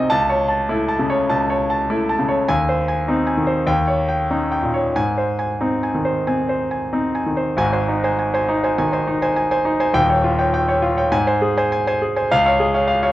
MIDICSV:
0, 0, Header, 1, 2, 480
1, 0, Start_track
1, 0, Key_signature, -4, "major"
1, 0, Tempo, 598802
1, 65, Time_signature, 4, 2, 24, 8
1, 2947, Tempo, 650054
1, 5827, Tempo, 610998
1, 6307, Tempo, 589971
1, 9667, Tempo, 567644
1, 10346, End_track
2, 0, Start_track
2, 0, Title_t, "Grand piano"
2, 0, Program_c, 0, 0
2, 0, Control_c, 0, 64, 127
2, 0, Note_on_c, 0, 36, 47
2, 0, Note_on_c, 0, 48, 46
2, 0, Note_on_c, 0, 60, 41
2, 0, Note_on_c, 0, 63, 43
2, 0, Note_on_c, 0, 75, 46
2, 0, Note_on_c, 0, 80, 48
2, 79, Control_c, 0, 64, 0
2, 79, Note_on_c, 0, 81, 76
2, 80, Note_on_c, 0, 37, 61
2, 81, Note_off_c, 0, 48, 0
2, 83, Note_off_c, 0, 60, 0
2, 83, Note_off_c, 0, 63, 0
2, 83, Note_off_c, 0, 80, 0
2, 85, Note_off_c, 0, 75, 0
2, 87, Note_off_c, 0, 36, 0
2, 196, Control_c, 0, 64, 127
2, 238, Note_on_c, 0, 73, 46
2, 324, Note_off_c, 0, 81, 0
2, 389, Note_on_c, 0, 81, 46
2, 485, Note_off_c, 0, 73, 0
2, 555, Note_on_c, 0, 57, 42
2, 556, Note_on_c, 0, 64, 48
2, 642, Note_off_c, 0, 81, 0
2, 710, Note_on_c, 0, 81, 51
2, 796, Note_on_c, 0, 49, 47
2, 806, Note_off_c, 0, 64, 0
2, 880, Note_on_c, 0, 73, 51
2, 933, Note_off_c, 0, 57, 0
2, 962, Note_off_c, 0, 81, 0
2, 1001, Note_off_c, 0, 37, 0
2, 1038, Note_on_c, 0, 37, 50
2, 1039, Note_on_c, 0, 81, 53
2, 1126, Note_off_c, 0, 73, 0
2, 1172, Note_off_c, 0, 49, 0
2, 1201, Note_on_c, 0, 73, 46
2, 1285, Note_off_c, 0, 81, 0
2, 1362, Note_on_c, 0, 81, 46
2, 1447, Note_off_c, 0, 73, 0
2, 1522, Note_on_c, 0, 57, 44
2, 1523, Note_on_c, 0, 64, 46
2, 1606, Note_off_c, 0, 81, 0
2, 1679, Note_on_c, 0, 81, 49
2, 1756, Note_on_c, 0, 49, 45
2, 1767, Note_off_c, 0, 64, 0
2, 1833, Note_on_c, 0, 73, 44
2, 1894, Note_off_c, 0, 57, 0
2, 1925, Note_off_c, 0, 81, 0
2, 1959, Note_off_c, 0, 37, 0
2, 1986, Note_off_c, 0, 73, 0
2, 1987, Note_off_c, 0, 49, 0
2, 1991, Control_c, 0, 64, 0
2, 1994, Note_on_c, 0, 80, 70
2, 1996, Note_on_c, 0, 39, 59
2, 2117, Control_c, 0, 64, 127
2, 2156, Note_on_c, 0, 72, 45
2, 2242, Note_off_c, 0, 80, 0
2, 2311, Note_on_c, 0, 80, 46
2, 2403, Note_off_c, 0, 72, 0
2, 2469, Note_on_c, 0, 63, 42
2, 2473, Note_on_c, 0, 60, 45
2, 2560, Note_off_c, 0, 80, 0
2, 2619, Note_on_c, 0, 80, 43
2, 2703, Note_on_c, 0, 51, 40
2, 2720, Note_off_c, 0, 63, 0
2, 2780, Note_on_c, 0, 72, 47
2, 2853, Note_off_c, 0, 60, 0
2, 2879, Note_off_c, 0, 80, 0
2, 2925, Note_off_c, 0, 39, 0
2, 2939, Note_on_c, 0, 39, 58
2, 2942, Note_on_c, 0, 79, 63
2, 2946, Note_off_c, 0, 72, 0
2, 2948, Note_off_c, 0, 51, 0
2, 2959, Control_c, 0, 64, 0
2, 3075, Control_c, 0, 64, 127
2, 3094, Note_on_c, 0, 73, 41
2, 3195, Note_off_c, 0, 79, 0
2, 3251, Note_on_c, 0, 79, 40
2, 3349, Note_off_c, 0, 73, 0
2, 3412, Note_on_c, 0, 61, 39
2, 3413, Note_on_c, 0, 63, 42
2, 3504, Note_off_c, 0, 79, 0
2, 3568, Note_on_c, 0, 79, 44
2, 3648, Note_on_c, 0, 46, 35
2, 3664, Note_off_c, 0, 63, 0
2, 3731, Note_on_c, 0, 73, 39
2, 3791, Note_off_c, 0, 61, 0
2, 3823, Note_off_c, 0, 79, 0
2, 3858, Note_off_c, 0, 39, 0
2, 3889, Note_off_c, 0, 46, 0
2, 3891, Note_off_c, 0, 73, 0
2, 3894, Note_on_c, 0, 44, 50
2, 3894, Note_on_c, 0, 80, 58
2, 3905, Control_c, 0, 64, 0
2, 4043, Control_c, 0, 64, 127
2, 4054, Note_on_c, 0, 72, 39
2, 4151, Note_off_c, 0, 80, 0
2, 4212, Note_on_c, 0, 80, 40
2, 4311, Note_off_c, 0, 72, 0
2, 4372, Note_on_c, 0, 63, 35
2, 4374, Note_on_c, 0, 60, 37
2, 4471, Note_off_c, 0, 80, 0
2, 4539, Note_on_c, 0, 80, 36
2, 4622, Note_on_c, 0, 51, 35
2, 4634, Note_off_c, 0, 63, 0
2, 4698, Note_on_c, 0, 72, 42
2, 4764, Note_off_c, 0, 60, 0
2, 4798, Note_off_c, 0, 80, 0
2, 4835, Note_off_c, 0, 44, 0
2, 4862, Note_on_c, 0, 60, 37
2, 4864, Note_on_c, 0, 80, 41
2, 4958, Note_off_c, 0, 72, 0
2, 5009, Note_off_c, 0, 51, 0
2, 5024, Note_on_c, 0, 72, 35
2, 5121, Note_off_c, 0, 80, 0
2, 5188, Note_on_c, 0, 80, 34
2, 5250, Note_off_c, 0, 60, 0
2, 5283, Note_off_c, 0, 72, 0
2, 5347, Note_on_c, 0, 60, 37
2, 5348, Note_on_c, 0, 63, 36
2, 5446, Note_off_c, 0, 80, 0
2, 5512, Note_on_c, 0, 80, 36
2, 5597, Note_on_c, 0, 51, 33
2, 5608, Note_off_c, 0, 63, 0
2, 5674, Note_on_c, 0, 72, 34
2, 5734, Note_off_c, 0, 60, 0
2, 5766, Note_off_c, 0, 80, 0
2, 5822, Note_on_c, 0, 32, 54
2, 5827, Note_off_c, 0, 72, 0
2, 5829, Note_off_c, 0, 51, 0
2, 5830, Note_on_c, 0, 80, 67
2, 5831, Note_on_c, 0, 44, 53
2, 5839, Control_c, 0, 64, 0
2, 5940, Note_off_c, 0, 80, 0
2, 5947, Note_on_c, 0, 72, 38
2, 5952, Note_on_c, 0, 80, 44
2, 5970, Control_c, 0, 64, 127
2, 6055, Note_off_c, 0, 72, 0
2, 6058, Note_off_c, 0, 80, 0
2, 6068, Note_on_c, 0, 63, 40
2, 6189, Note_on_c, 0, 72, 40
2, 6193, Note_on_c, 0, 80, 46
2, 6259, Note_off_c, 0, 63, 0
2, 6295, Note_off_c, 0, 72, 0
2, 6295, Note_off_c, 0, 80, 0
2, 6307, Note_on_c, 0, 80, 44
2, 6423, Note_off_c, 0, 80, 0
2, 6428, Note_on_c, 0, 72, 43
2, 6435, Note_on_c, 0, 80, 48
2, 6536, Note_off_c, 0, 72, 0
2, 6540, Note_off_c, 0, 80, 0
2, 6549, Note_on_c, 0, 63, 45
2, 6671, Note_on_c, 0, 72, 38
2, 6676, Note_on_c, 0, 80, 43
2, 6739, Note_off_c, 0, 63, 0
2, 6754, Note_off_c, 0, 32, 0
2, 6760, Note_off_c, 0, 44, 0
2, 6777, Note_off_c, 0, 72, 0
2, 6779, Note_off_c, 0, 80, 0
2, 6792, Note_on_c, 0, 51, 45
2, 6792, Note_on_c, 0, 80, 48
2, 6900, Note_off_c, 0, 80, 0
2, 6909, Note_on_c, 0, 72, 41
2, 6912, Note_on_c, 0, 80, 43
2, 6980, Note_off_c, 0, 51, 0
2, 7015, Note_off_c, 0, 72, 0
2, 7017, Note_off_c, 0, 80, 0
2, 7025, Note_on_c, 0, 63, 44
2, 7148, Note_on_c, 0, 72, 42
2, 7148, Note_on_c, 0, 80, 47
2, 7217, Note_off_c, 0, 63, 0
2, 7251, Note_off_c, 0, 80, 0
2, 7254, Note_off_c, 0, 72, 0
2, 7263, Note_on_c, 0, 80, 50
2, 7371, Note_off_c, 0, 80, 0
2, 7383, Note_on_c, 0, 80, 50
2, 7385, Note_on_c, 0, 72, 45
2, 7490, Note_off_c, 0, 80, 0
2, 7491, Note_off_c, 0, 72, 0
2, 7496, Note_on_c, 0, 63, 46
2, 7617, Note_on_c, 0, 72, 42
2, 7621, Note_on_c, 0, 80, 51
2, 7688, Note_off_c, 0, 63, 0
2, 7724, Note_off_c, 0, 72, 0
2, 7727, Note_off_c, 0, 80, 0
2, 7727, Note_on_c, 0, 27, 51
2, 7731, Note_on_c, 0, 39, 59
2, 7734, Note_on_c, 0, 79, 74
2, 7752, Control_c, 0, 64, 0
2, 7845, Note_off_c, 0, 79, 0
2, 7857, Note_on_c, 0, 79, 42
2, 7859, Note_on_c, 0, 73, 43
2, 7890, Control_c, 0, 64, 127
2, 7963, Note_off_c, 0, 79, 0
2, 7964, Note_off_c, 0, 73, 0
2, 7977, Note_on_c, 0, 65, 48
2, 8094, Note_on_c, 0, 73, 38
2, 8097, Note_on_c, 0, 79, 48
2, 8165, Note_off_c, 0, 65, 0
2, 8200, Note_off_c, 0, 73, 0
2, 8202, Note_off_c, 0, 79, 0
2, 8218, Note_on_c, 0, 79, 51
2, 8332, Note_off_c, 0, 79, 0
2, 8336, Note_on_c, 0, 73, 48
2, 8344, Note_on_c, 0, 79, 44
2, 8442, Note_off_c, 0, 73, 0
2, 8446, Note_off_c, 0, 79, 0
2, 8450, Note_on_c, 0, 65, 50
2, 8569, Note_on_c, 0, 73, 39
2, 8577, Note_on_c, 0, 79, 45
2, 8644, Note_off_c, 0, 65, 0
2, 8658, Note_off_c, 0, 27, 0
2, 8660, Note_off_c, 0, 39, 0
2, 8679, Note_off_c, 0, 73, 0
2, 8683, Note_off_c, 0, 79, 0
2, 8690, Note_on_c, 0, 44, 62
2, 8692, Note_on_c, 0, 80, 71
2, 8708, Control_c, 0, 64, 0
2, 8805, Note_off_c, 0, 80, 0
2, 8816, Note_on_c, 0, 72, 45
2, 8817, Note_on_c, 0, 80, 49
2, 8852, Control_c, 0, 64, 127
2, 8925, Note_off_c, 0, 72, 0
2, 8926, Note_off_c, 0, 80, 0
2, 8934, Note_on_c, 0, 68, 51
2, 9063, Note_on_c, 0, 72, 51
2, 9064, Note_on_c, 0, 80, 49
2, 9131, Note_off_c, 0, 68, 0
2, 9170, Note_off_c, 0, 80, 0
2, 9171, Note_off_c, 0, 72, 0
2, 9182, Note_on_c, 0, 80, 53
2, 9295, Note_off_c, 0, 80, 0
2, 9305, Note_on_c, 0, 72, 48
2, 9307, Note_on_c, 0, 80, 50
2, 9413, Note_off_c, 0, 72, 0
2, 9414, Note_off_c, 0, 80, 0
2, 9424, Note_on_c, 0, 68, 46
2, 9543, Note_on_c, 0, 80, 51
2, 9545, Note_on_c, 0, 72, 47
2, 9616, Note_off_c, 0, 68, 0
2, 9634, Note_off_c, 0, 44, 0
2, 9651, Note_off_c, 0, 80, 0
2, 9652, Note_off_c, 0, 72, 0
2, 9664, Note_on_c, 0, 37, 66
2, 9666, Note_on_c, 0, 77, 76
2, 9677, Control_c, 0, 64, 0
2, 9776, Note_off_c, 0, 77, 0
2, 9786, Note_on_c, 0, 73, 49
2, 9789, Note_on_c, 0, 77, 54
2, 9804, Control_c, 0, 64, 127
2, 9894, Note_off_c, 0, 73, 0
2, 9895, Note_off_c, 0, 77, 0
2, 9904, Note_on_c, 0, 68, 52
2, 10025, Note_on_c, 0, 73, 50
2, 10030, Note_on_c, 0, 77, 49
2, 10095, Note_off_c, 0, 68, 0
2, 10126, Note_off_c, 0, 77, 0
2, 10132, Note_off_c, 0, 73, 0
2, 10139, Note_on_c, 0, 77, 56
2, 10255, Note_off_c, 0, 77, 0
2, 10267, Note_on_c, 0, 77, 53
2, 10268, Note_on_c, 0, 73, 49
2, 10346, Note_off_c, 0, 37, 0
2, 10346, Note_off_c, 0, 73, 0
2, 10346, Note_off_c, 0, 77, 0
2, 10346, End_track
0, 0, End_of_file